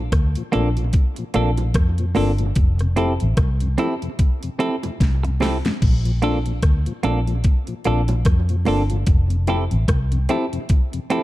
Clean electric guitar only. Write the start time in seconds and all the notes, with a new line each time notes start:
0.52 A#3 D4 A4
1.34 A#3 D4 A4
2.15 A#3 D4 A4
2.96 C4 E4 A4
3.78 C4 E4 A4
4.59 C4 E4 A4
5.23 muted clean electric guitar stroke
5.41 C4 E4 A4
6.22 A#3 D4 A4
7.03 A#3 D4 A4
7.85 A#3 D4 A4
8.66 A#3 D4 A4
9.48 C4 E4 A4
10.29 C4 E4 A4
11.10 C4 E4 A4